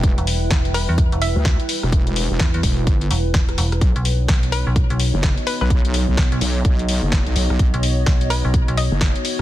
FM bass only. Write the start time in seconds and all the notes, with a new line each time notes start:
0.18 E1
0.51 E1
0.89 E2
1.12 E1
2.40 E2
2.54 E2
3.11 E1
3.58 E1
3.96 B1
4.29 B1
4.67 B1
4.90 B1
6.18 B1
6.32 B1
7.74 B1
8.07 B1
8.45 B1
8.68 B1